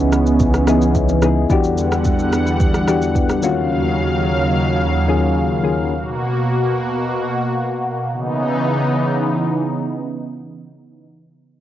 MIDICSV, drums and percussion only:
0, 0, Header, 1, 2, 480
1, 0, Start_track
1, 0, Tempo, 550459
1, 1306, Time_signature, 4, 2, 24, 8
1, 10119, End_track
2, 0, Start_track
2, 0, Title_t, "Drums"
2, 108, Note_on_c, 9, 37, 86
2, 109, Note_on_c, 9, 82, 90
2, 195, Note_off_c, 9, 37, 0
2, 196, Note_off_c, 9, 82, 0
2, 230, Note_on_c, 9, 82, 46
2, 317, Note_off_c, 9, 82, 0
2, 347, Note_on_c, 9, 36, 118
2, 347, Note_on_c, 9, 82, 79
2, 357, Note_on_c, 9, 64, 72
2, 434, Note_off_c, 9, 82, 0
2, 435, Note_off_c, 9, 36, 0
2, 444, Note_off_c, 9, 64, 0
2, 469, Note_on_c, 9, 37, 88
2, 470, Note_on_c, 9, 82, 54
2, 556, Note_off_c, 9, 37, 0
2, 557, Note_off_c, 9, 82, 0
2, 581, Note_on_c, 9, 61, 65
2, 585, Note_on_c, 9, 37, 96
2, 590, Note_on_c, 9, 82, 99
2, 668, Note_off_c, 9, 61, 0
2, 672, Note_off_c, 9, 37, 0
2, 677, Note_off_c, 9, 82, 0
2, 711, Note_on_c, 9, 82, 55
2, 798, Note_off_c, 9, 82, 0
2, 826, Note_on_c, 9, 60, 75
2, 827, Note_on_c, 9, 36, 83
2, 828, Note_on_c, 9, 82, 66
2, 913, Note_off_c, 9, 60, 0
2, 914, Note_off_c, 9, 36, 0
2, 915, Note_off_c, 9, 82, 0
2, 948, Note_on_c, 9, 82, 56
2, 954, Note_on_c, 9, 61, 75
2, 1035, Note_off_c, 9, 82, 0
2, 1041, Note_off_c, 9, 61, 0
2, 1064, Note_on_c, 9, 64, 80
2, 1065, Note_on_c, 9, 37, 95
2, 1066, Note_on_c, 9, 82, 100
2, 1151, Note_off_c, 9, 64, 0
2, 1153, Note_off_c, 9, 37, 0
2, 1154, Note_off_c, 9, 82, 0
2, 1307, Note_on_c, 9, 36, 115
2, 1308, Note_on_c, 9, 82, 71
2, 1394, Note_off_c, 9, 36, 0
2, 1395, Note_off_c, 9, 82, 0
2, 1429, Note_on_c, 9, 82, 50
2, 1516, Note_off_c, 9, 82, 0
2, 1551, Note_on_c, 9, 82, 79
2, 1638, Note_off_c, 9, 82, 0
2, 1672, Note_on_c, 9, 37, 92
2, 1673, Note_on_c, 9, 82, 51
2, 1760, Note_off_c, 9, 37, 0
2, 1761, Note_off_c, 9, 82, 0
2, 1784, Note_on_c, 9, 82, 74
2, 1788, Note_on_c, 9, 36, 83
2, 1871, Note_off_c, 9, 82, 0
2, 1875, Note_off_c, 9, 36, 0
2, 1909, Note_on_c, 9, 82, 51
2, 1996, Note_off_c, 9, 82, 0
2, 2028, Note_on_c, 9, 37, 86
2, 2029, Note_on_c, 9, 82, 87
2, 2115, Note_off_c, 9, 37, 0
2, 2116, Note_off_c, 9, 82, 0
2, 2150, Note_on_c, 9, 82, 46
2, 2238, Note_off_c, 9, 82, 0
2, 2267, Note_on_c, 9, 82, 81
2, 2268, Note_on_c, 9, 36, 111
2, 2354, Note_off_c, 9, 82, 0
2, 2355, Note_off_c, 9, 36, 0
2, 2390, Note_on_c, 9, 37, 84
2, 2391, Note_on_c, 9, 82, 54
2, 2478, Note_off_c, 9, 37, 0
2, 2479, Note_off_c, 9, 82, 0
2, 2507, Note_on_c, 9, 37, 93
2, 2512, Note_on_c, 9, 82, 101
2, 2594, Note_off_c, 9, 37, 0
2, 2599, Note_off_c, 9, 82, 0
2, 2633, Note_on_c, 9, 82, 53
2, 2721, Note_off_c, 9, 82, 0
2, 2748, Note_on_c, 9, 36, 83
2, 2750, Note_on_c, 9, 82, 64
2, 2835, Note_off_c, 9, 36, 0
2, 2837, Note_off_c, 9, 82, 0
2, 2871, Note_on_c, 9, 82, 52
2, 2872, Note_on_c, 9, 37, 78
2, 2958, Note_off_c, 9, 82, 0
2, 2959, Note_off_c, 9, 37, 0
2, 2988, Note_on_c, 9, 82, 100
2, 3075, Note_off_c, 9, 82, 0
2, 10119, End_track
0, 0, End_of_file